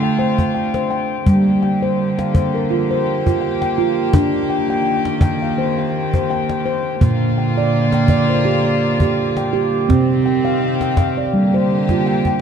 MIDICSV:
0, 0, Header, 1, 4, 480
1, 0, Start_track
1, 0, Key_signature, -2, "minor"
1, 0, Tempo, 718563
1, 846, Time_signature, 4, 2, 24, 8
1, 8292, End_track
2, 0, Start_track
2, 0, Title_t, "Handpan"
2, 0, Program_c, 0, 114
2, 0, Note_on_c, 0, 50, 67
2, 18, Note_on_c, 0, 79, 59
2, 118, Note_off_c, 0, 79, 0
2, 125, Note_on_c, 0, 72, 67
2, 126, Note_on_c, 0, 79, 54
2, 356, Note_off_c, 0, 79, 0
2, 364, Note_on_c, 0, 79, 57
2, 365, Note_off_c, 0, 72, 0
2, 497, Note_on_c, 0, 72, 68
2, 596, Note_off_c, 0, 79, 0
2, 604, Note_on_c, 0, 79, 58
2, 738, Note_off_c, 0, 72, 0
2, 818, Note_off_c, 0, 50, 0
2, 843, Note_on_c, 0, 55, 72
2, 978, Note_off_c, 0, 79, 0
2, 1084, Note_off_c, 0, 55, 0
2, 1085, Note_on_c, 0, 79, 55
2, 1219, Note_on_c, 0, 72, 61
2, 1459, Note_off_c, 0, 72, 0
2, 1459, Note_off_c, 0, 79, 0
2, 1462, Note_on_c, 0, 77, 50
2, 1565, Note_on_c, 0, 72, 66
2, 1700, Note_on_c, 0, 70, 50
2, 1806, Note_off_c, 0, 72, 0
2, 1807, Note_off_c, 0, 77, 0
2, 1808, Note_on_c, 0, 65, 71
2, 1943, Note_on_c, 0, 72, 58
2, 2047, Note_off_c, 0, 65, 0
2, 2047, Note_off_c, 0, 70, 0
2, 2178, Note_on_c, 0, 65, 55
2, 2280, Note_on_c, 0, 79, 56
2, 2288, Note_off_c, 0, 72, 0
2, 2408, Note_off_c, 0, 79, 0
2, 2416, Note_on_c, 0, 79, 59
2, 2419, Note_off_c, 0, 65, 0
2, 2527, Note_on_c, 0, 65, 73
2, 2765, Note_off_c, 0, 79, 0
2, 2765, Note_on_c, 0, 62, 81
2, 2767, Note_off_c, 0, 65, 0
2, 3006, Note_off_c, 0, 62, 0
2, 3006, Note_on_c, 0, 79, 53
2, 3132, Note_off_c, 0, 79, 0
2, 3140, Note_on_c, 0, 79, 64
2, 3381, Note_off_c, 0, 79, 0
2, 3489, Note_on_c, 0, 79, 69
2, 3623, Note_on_c, 0, 77, 51
2, 3728, Note_off_c, 0, 79, 0
2, 3729, Note_on_c, 0, 72, 67
2, 3866, Note_on_c, 0, 79, 62
2, 3968, Note_off_c, 0, 72, 0
2, 3969, Note_off_c, 0, 77, 0
2, 4104, Note_on_c, 0, 72, 62
2, 4203, Note_off_c, 0, 79, 0
2, 4211, Note_on_c, 0, 79, 66
2, 4333, Note_off_c, 0, 79, 0
2, 4341, Note_on_c, 0, 79, 57
2, 4343, Note_off_c, 0, 72, 0
2, 4446, Note_on_c, 0, 72, 77
2, 4682, Note_on_c, 0, 58, 70
2, 4687, Note_off_c, 0, 72, 0
2, 4688, Note_off_c, 0, 79, 0
2, 4690, Note_on_c, 0, 46, 66
2, 4925, Note_off_c, 0, 58, 0
2, 4929, Note_on_c, 0, 79, 51
2, 5060, Note_on_c, 0, 74, 69
2, 5296, Note_off_c, 0, 79, 0
2, 5301, Note_off_c, 0, 74, 0
2, 5304, Note_on_c, 0, 79, 60
2, 5410, Note_on_c, 0, 74, 68
2, 5540, Note_on_c, 0, 72, 49
2, 5645, Note_on_c, 0, 67, 70
2, 5649, Note_off_c, 0, 74, 0
2, 5650, Note_off_c, 0, 79, 0
2, 5778, Note_on_c, 0, 74, 55
2, 5887, Note_off_c, 0, 67, 0
2, 5888, Note_off_c, 0, 72, 0
2, 6021, Note_on_c, 0, 67, 59
2, 6127, Note_off_c, 0, 74, 0
2, 6259, Note_on_c, 0, 79, 54
2, 6261, Note_off_c, 0, 67, 0
2, 6367, Note_on_c, 0, 67, 77
2, 6583, Note_off_c, 0, 46, 0
2, 6604, Note_on_c, 0, 60, 79
2, 6606, Note_on_c, 0, 48, 65
2, 6607, Note_off_c, 0, 79, 0
2, 6608, Note_off_c, 0, 67, 0
2, 6847, Note_off_c, 0, 60, 0
2, 6851, Note_on_c, 0, 79, 53
2, 6979, Note_on_c, 0, 77, 67
2, 7219, Note_off_c, 0, 79, 0
2, 7220, Note_off_c, 0, 77, 0
2, 7227, Note_on_c, 0, 79, 53
2, 7330, Note_on_c, 0, 77, 60
2, 7465, Note_on_c, 0, 74, 52
2, 7548, Note_off_c, 0, 48, 0
2, 7569, Note_off_c, 0, 77, 0
2, 7571, Note_off_c, 0, 79, 0
2, 7571, Note_on_c, 0, 55, 63
2, 7703, Note_off_c, 0, 74, 0
2, 7710, Note_on_c, 0, 72, 56
2, 7952, Note_on_c, 0, 65, 59
2, 8053, Note_off_c, 0, 72, 0
2, 8060, Note_on_c, 0, 79, 59
2, 8187, Note_off_c, 0, 65, 0
2, 8190, Note_off_c, 0, 79, 0
2, 8198, Note_on_c, 0, 79, 50
2, 8292, Note_off_c, 0, 55, 0
2, 8292, Note_off_c, 0, 79, 0
2, 8292, End_track
3, 0, Start_track
3, 0, Title_t, "String section"
3, 0, Program_c, 1, 48
3, 0, Note_on_c, 1, 50, 60
3, 0, Note_on_c, 1, 57, 58
3, 0, Note_on_c, 1, 65, 66
3, 817, Note_off_c, 1, 50, 0
3, 818, Note_off_c, 1, 65, 0
3, 820, Note_off_c, 1, 57, 0
3, 846, Note_on_c, 1, 50, 53
3, 849, Note_on_c, 1, 58, 56
3, 849, Note_on_c, 1, 67, 67
3, 2748, Note_off_c, 1, 50, 0
3, 2768, Note_on_c, 1, 51, 64
3, 4663, Note_off_c, 1, 67, 0
3, 4664, Note_off_c, 1, 58, 0
3, 4669, Note_off_c, 1, 51, 0
3, 4683, Note_on_c, 1, 58, 65
3, 4686, Note_on_c, 1, 50, 65
3, 4688, Note_on_c, 1, 65, 79
3, 6587, Note_off_c, 1, 58, 0
3, 6588, Note_off_c, 1, 50, 0
3, 6589, Note_off_c, 1, 65, 0
3, 6598, Note_on_c, 1, 51, 63
3, 6599, Note_on_c, 1, 60, 58
3, 6602, Note_on_c, 1, 67, 69
3, 7554, Note_off_c, 1, 51, 0
3, 7554, Note_off_c, 1, 60, 0
3, 7556, Note_off_c, 1, 67, 0
3, 7575, Note_on_c, 1, 67, 68
3, 7576, Note_on_c, 1, 58, 56
3, 7580, Note_on_c, 1, 50, 63
3, 8292, Note_off_c, 1, 50, 0
3, 8292, Note_off_c, 1, 58, 0
3, 8292, Note_off_c, 1, 67, 0
3, 8292, End_track
4, 0, Start_track
4, 0, Title_t, "Cajon"
4, 257, Note_on_c, 9, 36, 43
4, 324, Note_off_c, 9, 36, 0
4, 495, Note_on_c, 9, 38, 39
4, 562, Note_off_c, 9, 38, 0
4, 845, Note_on_c, 9, 36, 47
4, 912, Note_off_c, 9, 36, 0
4, 984, Note_on_c, 9, 38, 15
4, 1050, Note_off_c, 9, 38, 0
4, 1461, Note_on_c, 9, 38, 39
4, 1527, Note_off_c, 9, 38, 0
4, 1567, Note_on_c, 9, 36, 45
4, 1634, Note_off_c, 9, 36, 0
4, 2182, Note_on_c, 9, 36, 46
4, 2249, Note_off_c, 9, 36, 0
4, 2417, Note_on_c, 9, 38, 40
4, 2483, Note_off_c, 9, 38, 0
4, 2762, Note_on_c, 9, 36, 62
4, 2829, Note_off_c, 9, 36, 0
4, 2896, Note_on_c, 9, 38, 16
4, 2962, Note_off_c, 9, 38, 0
4, 3375, Note_on_c, 9, 38, 44
4, 3442, Note_off_c, 9, 38, 0
4, 3479, Note_on_c, 9, 36, 54
4, 3546, Note_off_c, 9, 36, 0
4, 4099, Note_on_c, 9, 36, 43
4, 4165, Note_off_c, 9, 36, 0
4, 4338, Note_on_c, 9, 38, 41
4, 4405, Note_off_c, 9, 38, 0
4, 4684, Note_on_c, 9, 36, 51
4, 4751, Note_off_c, 9, 36, 0
4, 4817, Note_on_c, 9, 38, 15
4, 4883, Note_off_c, 9, 38, 0
4, 5293, Note_on_c, 9, 38, 38
4, 5360, Note_off_c, 9, 38, 0
4, 5398, Note_on_c, 9, 36, 49
4, 5465, Note_off_c, 9, 36, 0
4, 6012, Note_on_c, 9, 36, 42
4, 6079, Note_off_c, 9, 36, 0
4, 6256, Note_on_c, 9, 38, 38
4, 6323, Note_off_c, 9, 38, 0
4, 6612, Note_on_c, 9, 36, 54
4, 6612, Note_on_c, 9, 38, 18
4, 6679, Note_off_c, 9, 36, 0
4, 6679, Note_off_c, 9, 38, 0
4, 6745, Note_on_c, 9, 38, 17
4, 6811, Note_off_c, 9, 38, 0
4, 6851, Note_on_c, 9, 38, 15
4, 6918, Note_off_c, 9, 38, 0
4, 7220, Note_on_c, 9, 38, 37
4, 7287, Note_off_c, 9, 38, 0
4, 7328, Note_on_c, 9, 36, 53
4, 7328, Note_on_c, 9, 38, 16
4, 7395, Note_off_c, 9, 36, 0
4, 7395, Note_off_c, 9, 38, 0
4, 7563, Note_on_c, 9, 38, 17
4, 7630, Note_off_c, 9, 38, 0
4, 7942, Note_on_c, 9, 36, 43
4, 7942, Note_on_c, 9, 38, 17
4, 8008, Note_off_c, 9, 36, 0
4, 8008, Note_off_c, 9, 38, 0
4, 8183, Note_on_c, 9, 36, 28
4, 8250, Note_off_c, 9, 36, 0
4, 8292, End_track
0, 0, End_of_file